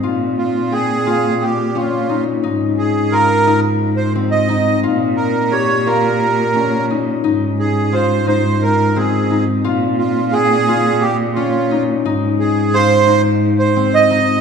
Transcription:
X:1
M:7/8
L:1/16
Q:1/4=87
K:Ab
V:1 name="Accordion"
z2 F2 A4 G2 F3 z | z2 A2 B3 z2 c2 e3 | z2 B2 d2 B6 z2 | z2 A2 c2 c2 B2 A3 z |
z2 F2 A4 G2 F3 z | z2 A2 c3 z2 c2 e3 |]
V:2 name="Harp"
F4 g2 F4 D2 E2 | E4 F2 E4 C2 E2 | F4 G2 F4 D2 E2 | E4 F2 E4 C2 E2 |
F4 g2 F4 D2 E2 | E4 F2 E4 C2 E2 |]
V:3 name="Cello" clef=bass
B,,12- B,,2 | A,,12- A,,2 | B,,12- B,,2 | A,,12- A,,2 |
B,,12- B,,2 | A,,12- A,,2 |]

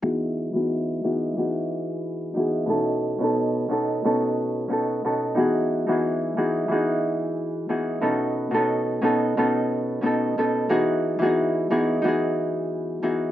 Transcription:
X:1
M:4/4
L:1/16
Q:"Swing 16ths" 1/4=90
K:E
V:1 name="Harp"
[E,B,DFG]3 [E,B,DFG]3 [E,B,DFG]2 [E,B,DFG]6 [E,B,DFG]2 | [B,,B,CDA]3 [B,,B,CDA]3 [B,,B,CDA]2 [B,,B,CDA]4 [B,,B,CDA]2 [B,,B,CDA]2 | [E,B,DFG]3 [E,B,DFG]3 [E,B,DFG]2 [E,B,DFG]6 [E,B,DFG]2 | [B,,B,CDA]3 [B,,B,CDA]3 [B,,B,CDA]2 [B,,B,CDA]4 [B,,B,CDA]2 [B,,B,CDA]2 |
[E,B,DFG]3 [E,B,DFG]3 [E,B,DFG]2 [E,B,DFG]6 [E,B,DFG]2 |]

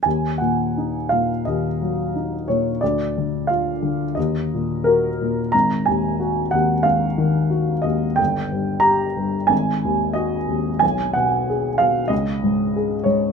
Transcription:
X:1
M:4/4
L:1/8
Q:1/4=90
K:Ebm
V:1 name="Grand piano"
a g2 f e3 d | =d2 f2 e2 B2 | b a2 g f3 e | =g2 b2 a2 e2 |
[K:G#dor] g f2 e d3 c |]
V:2 name="Grand piano" clef=bass
E,, B,, E B,, E,, G, E B,, | =D,, =D, F D, E,, B,, G B,, | A,,, E,, G E,, A,,, E, G E,, | =G,,, =G,, =G G,, A,,, E,, _G E,, |
[K:G#dor] B,,, B,, G B,, C,, G,, G G,, |]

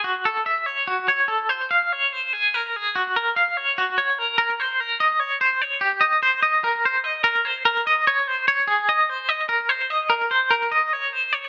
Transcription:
X:1
M:7/8
L:1/8
Q:1/4=146
K:Gblyd
V:1 name="Clean electric guitar"
G =A _f d G d A | c f d c A B A | G B f d G d B | B c B e d c d |
=G e c e B c e | B c B e d c d | A e c e B c e | B c B e d c d |]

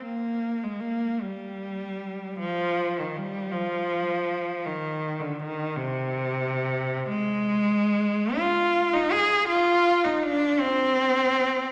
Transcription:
X:1
M:6/8
L:1/16
Q:3/8=52
K:Cm
V:1 name="Cello" clef=bass
B,3 A, B,2 G,6 | F,3 E, G,2 F,6 | E,3 D, E,2 C,6 | [K:Abdor] A,6 F3 E A2 |
F3 E =D2 =C6 |]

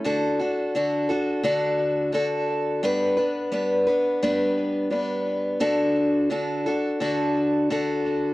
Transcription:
X:1
M:4/4
L:1/8
Q:1/4=86
K:D
V:1 name="Steel-string acoustic guitar"
[D,DFA] [DFA] [D,DFA] [DFA] [D,DFA]2 [D,DFA]2 | [G,B,DB] [B,DB] [G,B,DB] [B,DB] [G,B,DB]2 [G,B,DB]2 | [D,DFA]2 [D,DFA] [DFA] [D,DFA]2 [D,DFA]2 |]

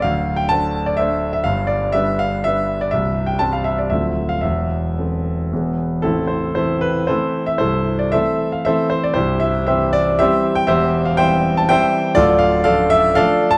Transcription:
X:1
M:3/4
L:1/16
Q:1/4=119
K:Am
V:1 name="Grand piano"
f3 g a3 d e3 e | f2 d2 e2 f2 e3 d | e3 g a f e d e3 f | e8- e2 z2 |
[CEA]2 c2 [EAc]2 B2 [EAc]3 e | [EAc]3 d [Ace]3 f [Ace]2 c d | [EGc]2 e2 [Gce]2 d2 [Gce]3 g | [Gce]3 f [ceg]3 a [ceg]4 |
[FAd]2 f2 [Adf]2 e2 [Adf]3 a |]
V:2 name="Grand piano" clef=bass
[D,,,D,,]4 [A,Dc]4 [A,Dc]4 | [G,,,G,,]4 [G,DB]4 [G,DB]4 | [C,,,C,,]4 [G,Cc]4 [D,,,D,,F,CA]4 | [E,,,E,,]4 [E,CA]4 [E,,,E,,E,B,^G]4 |
[A,,,,A,,,]4 [E,A,C]4 [E,A,C]4 | [C,,,C,,]4 [E,A,C]4 [E,A,C]4 | [C,,,C,,]4 [E,G,C]4 [E,G,C]4 | [E,,,E,,]4 [E,G,C]4 [E,G,C]4 |
[D,,,D,,]4 [F,A,D]4 [F,A,D]4 |]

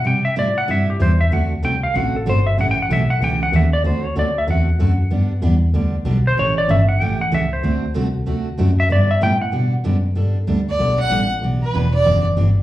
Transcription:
X:1
M:4/4
L:1/8
Q:"Swing" 1/4=190
K:G
V:1 name="Electric slide guitar"
g e d f e G c e | f z g =f ^f A c e | (3f g f e f g f e d | c ^c d e f4- |
f2 z4 z c | ^c d e f g f e =c- | c2 z4 z e | d e g f2 z3 |
z8 | z8 |]
V:2 name="Fiddle"
z8 | z8 | z8 | z8 |
z8 | z8 | z8 | z8 |
z3 d2 f2 z | z B2 d2 z3 |]
V:3 name="Steel-string acoustic guitar"
[C,G,CEG] z [C,G,CEG] z [C,G,CEG] z [C,G,CEG] z | [D,A,CFA] z [D,A,CFA] z [D,A,CFA] z [D,A,CFA] z | [^C,E,A,^CG] z [C,E,A,CG] z [C,E,A,CG] z [C,E,A,CG] z | [D,A,CFA] z [D,A,CFA] z [D,A,CFA] z [D,A,CFA] z |
[D,G,B,DG] z [D,G,B,DG] z [D,G,B,DG] z [D,G,B,DG] z | [^C,E,A,^CG] z [C,E,A,CG] z [C,E,A,CG] z [C,E,A,CG] z | [D,A,CFA] z [D,A,CFA] z [D,A,CFA] z [D,A,CFA] z | [D,G,B,DG] z [D,G,B,DG] z [D,G,B,DG] z [D,G,B,DG] z |
[G,B,DA] z [G,B,DA] z [G,B,DA] z [G,B,DA] z | [E,B,DG] z [E,B,DG] z [E,B,DG] z [E,B,DG] z |]
V:4 name="Double bass" clef=bass
C,2 A,,2 G,,2 E,,2 | D,,2 C,,2 A,,,2 G,,, G,,, | A,,,2 B,,,2 ^C,,2 _E,,2 | D,,2 D,,2 E,,2 F,,2 |
G,,2 E,,2 D,,2 B,,,2 | A,,, A,,, G,,,2 A,,,2 ^C,,2 | D,,2 C,,2 D,,2 F,,2 | G,,2 A,,2 B,, B,, F,,2 |
G,,2 D,, D,, B,,,2 A,,,2 | B,,,2 E,,,2 F,,,2 G,,,2 |]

